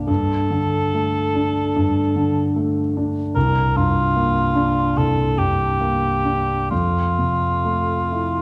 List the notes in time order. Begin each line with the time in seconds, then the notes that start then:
Already playing: C2 G2 A#3 D4
0.07 G2 A4
0.50 D3
0.94 A3
1.35 D4
1.76 G2
2.16 D3
2.56 A3
2.97 D4
3.35 C2 A#4
3.76 G2 F4
4.16 A#3
4.55 D4
4.97 C2 A4
5.38 G2 G4
5.81 A#3
6.25 D4
6.71 F2 F4
7.18 C3
7.65 A3
8.12 E4